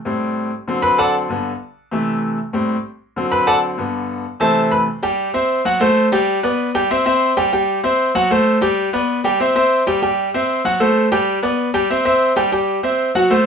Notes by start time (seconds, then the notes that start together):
0.05 A2 G3 C4
0.68 D3 F#3 C4
0.82 B4 B5
0.98 A4 D5 F#5 A5
1.29 G2 D3 B3
1.91 C3 E3 A3
2.53 A2 G3 C4
3.16 D3 F#3 C4
3.32 B4 B5
3.47 A4 D5 F#5 A5
3.78 G2 D3 B3
4.40 C3 E3 A3 A4 C5 E5 A5
4.71 B4 B5
5.03 G3 G4 G5
5.34 C4 C5 E5
5.65 F#3 F#4 F#5
5.80 A3 A4 C5
6.12 G3 G4 G5
6.43 B3 B4 D5
6.75 G3 G4 G5
6.91 C4 C5 E5
7.06 C4 C5 E5
7.37 G3 G4 G5
7.53 G3 G4 G5
7.84 C4 C5 E5
8.15 F#3 F#4 F#5
8.31 A3 A4 C5
8.61 G3 G4 G5
8.93 B3 B4 D5
9.24 G3 G4 G5
9.40 C4 C5 E5
9.55 C4 C5 E5
9.87 G3 G4 G5
10.02 G3 G4 G5
10.34 C4 C5 E5
10.65 F#3 F#4 F#5
10.80 A3 A4 C5
11.12 G3 G4 G5
11.43 B3 B4 D5
11.74 G3 G4 G5
11.90 C4 C5 E5
12.05 C4 C5 E5
12.36 G3 G4 G5
12.52 G3 G4 G5
12.83 C4 C5 E5
13.15 F#3 F#4 F#5
13.30 A3 A4 C5